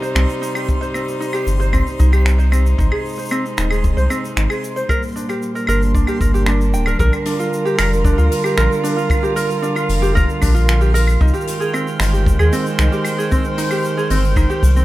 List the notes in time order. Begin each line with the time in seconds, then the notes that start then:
Already playing: C3 G3 D#4 C5 C6
0.02 C5, shaker
0.15 C2 C4, finger snap, claves, shaker
0.29 shaker
0.41 D#4, shaker
0.55 G4, claves, shaker
0.69 kick, shaker
0.81 C5, shaker
0.94 C4, claves, shaker
1.08 shaker
1.20 D#4, shaker
1.33 G4, claves, shaker
1.47 G1, shaker
1.60 C5, shaker
1.73 C4, kick, claves, shaker
1.87 shaker
1.99 C2 D#4, kick, shaker
2.12 G4, claves, shaker
2.26 finger snap, shaker
2.39 C5, shaker
2.52 C4, claves, shaker
2.66 shaker
2.78 G#1 D#4, kick, shaker
2.91 G#3 G#4, claves
3.05 shaker
3.09 shaker
3.12 shaker
3.15 C5, shaker
3.18 shaker
3.22 shaker
3.25 shaker
3.29 C4, claves, shaker
3.32 shaker
3.46 shaker
3.58 D#1 D#4, finger snap, shaker
3.70 G#4, claves, shaker
3.84 kick, shaker
3.97 C2 C5, shaker
4.10 C4, claves, shaker
4.25 shaker
4.36 G#1 D#4, finger snap, shaker
4.50 G#4, claves, shaker
4.64 shaker
4.76 C5, shaker
4.89 A#2 A#4, kick, claves, shaker
4.93 G3
5.03 shaker
5.07 shaker
5.12 D4, shaker
5.16 shaker
5.20 shaker
5.25 shaker
5.29 G4, claves, shaker
5.42 shaker
5.55 A#4, shaker
5.65 G1 D4 A#4, claves
5.69 shaker
5.82 shaker
5.95 D4, kick, shaker
6.07 G4, claves, shaker
6.21 G1 A#4, kick, shaker
6.34 G4, shaker
6.46 D4, finger snap, claves, shaker
6.61 shaker
6.74 D1 G5, shaker
6.86 A#4, claves, shaker
6.99 A#1 D3 A#4 F6, kick, shaker
7.13 claves, shaker
7.25 D4 F4, open hi-hat, shaker
7.39 F4, shaker
7.53 shaker
7.65 G4, shaker
7.78 F1 A#4, finger snap, open hi-hat, claves, shaker
7.93 shaker
8.05 D4, kick, shaker
8.18 D2 F4, shaker
8.31 open hi-hat, shaker
8.44 G4, claves, shaker
8.57 A#1 A#4, finger snap, shaker
8.72 shaker
8.84 D4, open hi-hat, shaker
8.96 F4, shaker
9.10 kick, claves, shaker
9.23 G4, shaker
9.36 A#4, open hi-hat, shaker
9.50 shaker
9.62 D4, shaker
9.75 F4, claves, shaker
9.89 F1, open hi-hat, shaker
10.02 G4, shaker
10.15 A#4, kick, shaker
10.29 shaker
10.41 A#1 D4, kick, open hi-hat, claves, shaker
10.54 F4, shaker
10.68 finger snap, shaker
10.81 G4, shaker
10.94 A#4, open hi-hat, shaker
11.08 claves, shaker
11.21 C2 D#3 D#4, kick, shaker
11.28 shaker
11.34 G4, shaker
11.41 G#3, shaker
11.47 G5, open hi-hat, shaker
11.60 G#4, shaker
11.73 C4, claves, shaker
11.87 shaker
11.96 G1 D#4 C5, finger snap
12.00 open hi-hat, shaker
12.13 G4, shaker
12.26 kick, shaker
12.39 D#2 G#4, claves, shaker
12.52 C4, open hi-hat, shaker
12.66 shaker
12.79 C2 D#4, finger snap, shaker
12.92 G4, shaker
13.04 open hi-hat, claves, shaker
13.18 G#4, shaker
13.31 C4, kick, shaker
13.45 shaker
13.58 D#4, open hi-hat, shaker
13.71 G4, claves, shaker
13.85 shaker
13.97 G#4, shaker
14.10 G1 C4, open hi-hat, shaker
14.24 shaker
14.36 D#4, kick, claves, shaker
14.50 G4, shaker
14.63 C2, kick, open hi-hat, shaker
14.76 C4, shaker